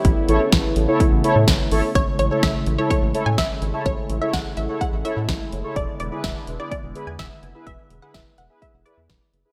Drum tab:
HH |xxxxxxxo|xxxxxxxx|xxxxxxxx|xxxxxxxx|
SD |--o---o-|--o---o-|--o---o-|--o---o-|
BD |o-o-o-o-|o-o-o-o-|o-o-o-o-|o-o-o-o-|

HH |xxxxxxxx|
SD |--o---o-|
BD |o-o-o-o-|